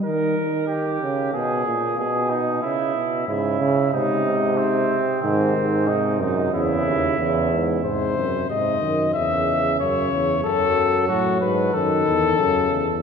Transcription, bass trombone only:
3.28 G#2
3.61 C#3
3.94 C3
5.23 G#2
5.56 G#2
6.21 F#2
6.53 E2
6.86 D#2
7.18 E2
7.84 G#2
8.18 F#2
8.49 G#2
8.82 F#2
9.16 E2
9.80 F#2
10.12 E2
10.45 F#2
11.09 A2
11.42 G#2
11.74 F#2
12.07 E2
12.38 F#2
12.71 E2

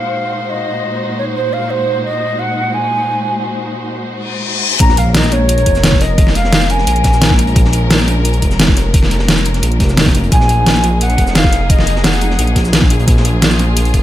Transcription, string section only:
Already playing: A#2 G#3 D#4 F#4 C5
4.80 G#3 A#3 C#4 A#4
10.32 F#3 D#4 G#4
13.08 F4

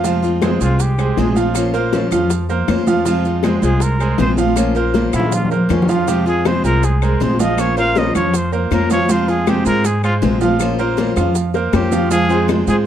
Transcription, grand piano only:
0.05 F3 F4 F5
0.42 G#3 G#4 C5
0.61 G#3 G#4 C5
0.98 G#3 G#4 C5
1.36 F3 F4 F5
1.74 A#3 A#4 C5
2.12 F3 F4 F5
2.49 A#3 A#4 C5
2.87 F3 F4 F5
3.06 F3 F4 F5
3.44 G#3 G#4 C5
3.62 G#3 G#4 C5
4.00 G#3 G#4 C5
4.38 F3 F4 F5
4.76 A#3 A#4 C5
5.13 F3 F4 F5
5.51 A#3 A#4 C5
5.89 F3 F4 F5
6.08 F3 F4 F5
6.45 G#3 G#4 C5
6.64 G#3 G#4 C5
7.02 G#3 G#4 C5
7.40 F3 F4 F5
7.77 A#3 A#4 C5
8.15 F3 F4 F5
8.52 A#3 A#4 C5
8.90 F3 F4 F5
9.09 F3 F4 F5
9.47 G#3 G#4 C5
9.66 G#3 G#4 C5
10.03 G#3 G#4 C5
10.41 F3 F4 F5
10.79 A#3 A#4 C5
11.17 F3 F4 F5
11.54 A#3 A#4 C5
11.92 F3 F4 F5
12.11 F3 F4 F5
12.30 G#3 G#4 C5
12.67 G#3 G#4 C5

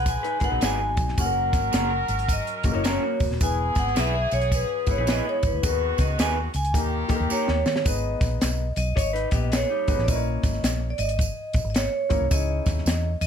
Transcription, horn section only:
Already playing: G#3 D#4 B4
1.19 F#3 C#4 A#4
3.41 E3 B3 G#4
5.62 D#3 B3 F#4
6.74 D#3 A#3 G4

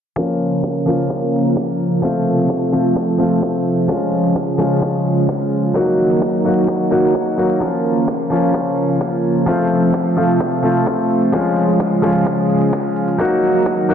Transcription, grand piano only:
0.16 F3 A#3 C#4 F4
0.86 F3 A#3 C#4 F4
2.02 F3 A3 C4 F4
2.72 F3 A3 C4 F4
3.18 F3 A3 C4 F4
3.88 F3 G#3 C#4 F4
4.58 F3 G#3 C#4 F4
5.74 F#3 A#3 D#4 F#4
6.45 F#3 A#3 D#4 F#4
6.91 F#3 A#3 D#4 F#4
7.38 F#3 A#3 D#4 F#4
7.60 F3 A#3 C#4 F4
8.30 F3 A#3 C#4 F4
9.46 F3 A3 C4 F4
10.17 F3 A3 C4 F4
10.63 F3 A3 C4 F4
11.32 F3 G#3 C#4 F4
12.02 F3 G#3 C#4 F4
13.18 F#3 A#3 D#4 F#4
13.89 F#3 A#3 D#4 F#4

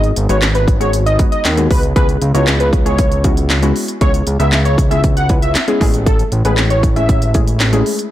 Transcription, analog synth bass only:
Already playing: G#1
0.17 G#1
0.30 G#1
1.45 D#2
1.71 C#2
1.96 C#2
2.22 C#2
2.34 C#2
4.01 C#2
4.27 C#2
4.40 C#2
5.81 A1
6.32 A1
6.45 A1

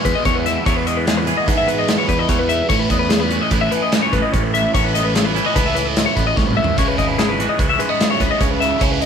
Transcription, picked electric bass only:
0.05 E2
0.26 E2
0.66 E2
1.48 G#2
2.09 E2
2.29 E2
2.70 A1
2.90 E2
3.51 A1
4.13 A1
4.34 A1
4.74 A1
5.56 C#2
6.17 A1
6.37 C2
6.78 C#2
6.98 G#1
7.59 C#2
8.20 C#2
8.41 C#2
8.81 C#2

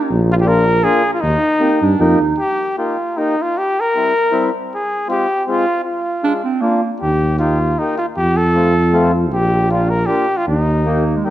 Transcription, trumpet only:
0.32 F4
0.41 G4
0.48 A#4
0.84 G#4
1.14 F4
1.21 D#4
2.38 G4
2.78 F4
3.17 D#4
3.42 F4
3.58 G4
3.80 A#4
4.75 G#4
5.11 G4
5.50 F4
5.84 F4
7.00 G4
7.39 F4
7.79 D#4
7.98 F4
8.17 G4
8.37 A4
9.33 G4
9.72 F4
9.90 A#4
10.06 G4
10.37 F4
10.48 D#4

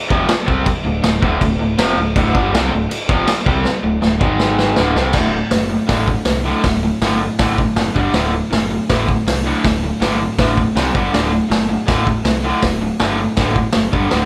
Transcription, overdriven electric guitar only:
0.09 F2 C3 F3
0.29 muted overdriven electric guitar stroke
0.46 C3 G3 C4
0.66 muted overdriven electric guitar stroke
0.84 D2 A2
1.02 D2 A2
1.21 D2 A2 D3
1.40 D2 A2
1.59 D2 A2
1.77 F2 C3 F3
1.98 D2 A2
2.16 D2 A2 D3
2.34 G2 D3 G3
2.53 C3 G3 C4
2.71 D2 A2
2.90 muted overdriven electric guitar stroke
3.10 F2 C3 F3
3.27 muted overdriven electric guitar stroke
3.46 C3 G3 C4
3.65 muted overdriven electric guitar stroke
3.84 D2 A2
4.02 D2 A2
4.20 G#2 D#3 G#3
4.77 D2 A2 D3
4.96 C3 G3 C4
5.15 D2 A2 D3
5.33 D2 A2
5.50 D2 A2
5.69 D2 A2
5.87 D2 A2 D3
6.07 D2 A2
6.25 D2 A2
6.44 D2 A2 D3
6.64 D2 A2
6.83 D2 A2
7.02 D2 A2 D3
7.21 D2 A2
7.39 D2 A2 D3
7.57 D2 A2
7.77 D2 A2
7.94 G2 D3 G3
8.13 D2 A2 D3
8.32 D2 A2
8.50 D2 A2
8.70 D2 A2
8.89 D2 A2 D3
9.08 D2 A2
9.27 D2 A2
9.44 D2 A2 D3
9.64 D2 A2
9.83 D2 A2
10.00 D2 A2 D3
10.20 D2 A2
10.39 D2 A2 D3
10.58 D2 A2
10.76 C3 G3 C4
10.94 G2 D3 G3
11.13 D2 A2 D3
11.32 D2 A2
11.50 D2 A2
11.69 D2 A2
11.86 D2 A2 D3
12.06 D2 A2
12.25 D2 A2
12.44 D2 A2 D3
12.63 D2 A2
12.81 D2 A2
13.00 D2 A2 D3
13.19 D2 A2
13.38 D2 A2 D3
13.55 D2 A2
13.73 D2 A2
13.92 G2 D3 G3
14.10 D2 A2 D3

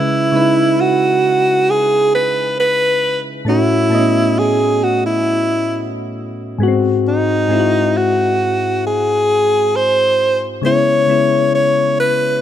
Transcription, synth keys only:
Already playing: C#3 G#3 E4 B4
0.32 C#3 G#3 D#4
0.36 B4
0.41 E4
3.45 A2 A3 C#4
3.49 F#4
3.90 A2 A3 B3
3.95 D#5
4.00 C#4
6.58 G#2 G#3 B3
6.63 F#4
6.68 C4
7.48 G#2 G#3 C4
7.53 E4
7.59 F#4
10.62 C#3 G#3 B3
10.66 E4
11.06 C#3 G#3 B3
11.11 E4

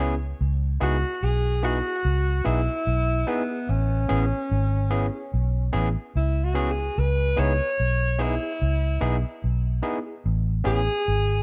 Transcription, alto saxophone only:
0.83 F#4
1.24 G#4
1.65 F#4
2.46 E4
3.28 B3
3.69 C#4
6.17 E4
6.44 F#4
6.71 G#4
6.99 B4
7.39 C#5
8.22 E4
10.67 G#4

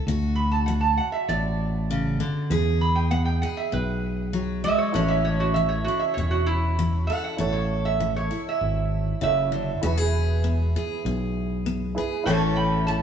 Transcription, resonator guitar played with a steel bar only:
0.35 B5
0.51 A5
0.66 F#5
0.81 A5
0.97 F#5
1.12 E5
1.28 D5
2.81 B5
2.96 G5
3.11 F#5
3.25 G5
3.42 F#5
3.57 E5
3.73 B4
4.64 E5
4.78 C#5
4.94 F#4
5.08 E5
5.25 C#5
5.40 F#4
5.54 E5
5.69 C#5
5.84 F#4
5.99 E5
6.14 C#5
6.31 F#4
6.46 E4
7.07 F#5
7.24 F#5
7.52 C#5
7.85 E5
8.16 C#5
8.49 E5
9.23 E5
12.26 C#5 A5
12.56 G5 B5
12.87 A5

